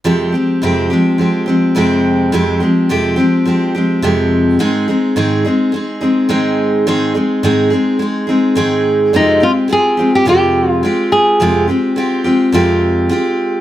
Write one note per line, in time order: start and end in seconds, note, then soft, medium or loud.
0.04 0.33 F2 medium
0.04 0.33 C3 medium
0.04 0.33 F3 medium
0.04 0.34 G#3 medium
0.04 0.33 C4 medium
0.04 0.31 G4 medium
0.32 0.62 F3 soft
0.32 0.62 G#3 soft
0.32 0.62 C4 soft
0.32 0.61 G4 soft
0.62 0.90 F2 medium
0.62 0.91 C3 medium
0.62 0.91 F3 medium
0.62 0.91 G#3 medium
0.62 0.90 C4 medium
0.62 0.89 G4 medium
0.90 1.17 F3 soft
0.90 1.18 G#3 soft
0.90 1.19 C4 soft
0.90 1.18 G4 soft
1.18 1.47 F3 soft
1.18 1.47 G#3 soft
1.18 1.46 C4 medium
1.18 1.45 G4 soft
1.46 1.75 F3 soft
1.46 1.75 G#3 soft
1.46 1.76 C4 soft
1.46 1.75 G4 soft
1.75 2.31 F2 medium
1.75 2.31 C3 medium
1.75 2.32 F3 medium
1.75 2.33 G#3 medium
1.75 2.34 C4 medium
1.75 2.33 G4 medium
2.32 2.61 F2 medium
2.32 2.61 C3 medium
2.32 2.61 F3 medium
2.32 2.61 G#3 medium
2.32 2.60 C4 medium
2.32 2.59 G4 medium
2.60 2.89 F3 soft
2.60 2.90 G#3 soft
2.60 2.89 C4 soft
2.60 2.89 G4 soft
2.89 3.18 F2 medium
2.89 3.18 C3 medium
2.89 3.18 F3 medium
2.89 3.17 G#3 medium
2.89 3.16 C4 medium
2.89 3.15 G4 medium
3.16 3.44 F3 soft
3.16 3.45 G#3 soft
3.16 3.46 C4 soft
3.16 3.45 G4 soft
3.45 3.74 F3 medium
3.45 3.74 G#3 soft
3.45 3.75 C4 medium
3.45 3.73 G4 medium
3.75 4.02 F3 soft
3.75 4.03 G#3 soft
3.75 4.03 C4 soft
3.75 4.03 G4 soft
4.02 4.59 F2 medium
4.02 4.59 C3 medium
4.02 4.60 F3 medium
4.02 4.60 G#3 medium
4.02 4.60 C4 medium
4.02 4.60 G4 medium
4.59 4.88 G#2 medium
4.59 4.88 D#3 medium
4.59 4.88 G#3 medium
4.59 4.88 C4 medium
4.59 4.88 D#4 medium
4.59 4.87 G#4 medium
4.88 5.15 G#3 soft
4.88 5.16 C4 soft
4.88 5.16 D#4 soft
4.88 5.16 G#4 soft
5.16 5.44 G#2 medium
5.16 5.45 D#3 medium
5.16 5.45 G#3 medium
5.16 5.45 C4 medium
5.16 5.44 D#4 medium
5.16 5.43 G#4 medium
5.45 5.71 G#3 soft
5.45 5.73 C4 soft
5.45 5.73 D#4 soft
5.45 5.73 G#4 soft
5.72 6.01 G#3 soft
5.72 6.01 C4 medium
5.72 6.00 D#4 medium
5.72 5.99 G#4 medium
6.01 6.28 G#3 soft
6.01 6.29 C4 soft
6.01 6.29 D#4 soft
6.01 6.29 G#4 soft
6.29 6.86 G#2 medium
6.29 6.86 D#3 medium
6.29 6.87 G#3 medium
6.29 6.87 C4 medium
6.29 6.87 D#4 medium
6.29 6.88 G#4 medium
6.87 7.15 G#2 medium
6.87 7.15 D#3 medium
6.87 7.15 G#3 medium
6.87 7.15 C4 medium
6.87 7.14 D#4 medium
6.87 7.13 G#4 medium
7.14 7.43 G#3 soft
7.14 7.43 C4 soft
7.14 7.43 D#4 soft
7.14 7.43 G#4 soft
7.43 7.71 G#2 medium
7.43 7.72 D#3 medium
7.43 7.72 G#3 medium
7.43 7.72 C4 medium
7.43 7.71 D#4 medium
7.43 7.69 G#4 medium
7.70 7.98 G#3 soft
7.70 7.99 C4 soft
7.70 8.00 D#4 soft
7.70 7.99 G#4 medium
7.99 8.28 G#3 soft
7.99 8.28 C4 medium
7.99 8.28 D#4 medium
7.99 8.26 G#4 medium
8.27 8.55 G#3 soft
8.27 8.56 C4 soft
8.27 8.56 D#4 medium
8.27 8.56 G#4 soft
8.55 9.13 G#2 medium
8.55 9.13 D#3 medium
8.55 9.14 G#3 medium
8.55 9.14 C4 medium
8.55 9.14 D#4 medium
8.55 9.16 G#4 medium
9.13 9.42 F2 medium
9.13 9.42 C3 medium
9.13 9.42 G#3 medium
9.13 9.41 C4 medium
9.13 9.44 D#4 medium
9.13 9.40 F4 medium
9.13 9.39 G4 medium
9.40 9.67 G#3 soft
9.40 9.68 C4 soft
9.40 9.69 F4 soft
9.40 9.51 F4 medium
9.40 9.69 G4 soft
9.68 9.97 G#3 soft
9.68 9.98 C4 medium
9.68 9.98 F4 soft
9.68 9.96 G4 medium
9.72 10.15 G#4 medium
9.97 10.26 G#3 soft
9.97 10.26 C4 soft
9.97 10.26 F4 soft
9.97 10.26 G4 soft
10.15 10.28 G4 medium
10.25 10.83 F2 medium
10.25 10.83 C3 medium
10.25 10.82 G#3 medium
10.25 10.84 C4 medium
10.25 10.84 F4 medium
10.25 10.84 G4 medium
10.25 10.69 G4 medium
10.69 10.81 F4 medium
10.83 11.41 G#3 soft
10.83 11.41 C4 medium
10.83 11.41 F4 medium
10.83 11.41 G4 medium
11.12 11.65 G#4 medium
11.40 11.68 F2 medium
11.40 11.69 C3 medium
11.40 11.69 G#3 medium
11.40 11.68 C4 medium
11.40 11.68 F4 medium
11.40 11.66 G4 medium
11.68 11.95 G#3 soft
11.68 11.96 C4 soft
11.68 11.97 F4 soft
11.68 11.96 G4 soft
11.96 12.25 G#3 medium
11.96 12.25 C4 medium
11.96 12.24 F4 medium
11.96 12.23 G4 medium
12.24 12.53 G#3 soft
12.24 12.53 C4 soft
12.24 12.53 F4 soft
12.24 12.53 G4 medium
12.52 13.10 F2 medium
12.52 13.10 C3 medium
12.52 13.09 G#3 medium
12.52 13.10 C4 medium
12.52 13.10 F4 medium
12.52 13.11 G4 medium
13.09 13.61 G#3 medium
13.09 13.61 C4 medium
13.09 13.61 F4 medium
13.09 13.61 G4 medium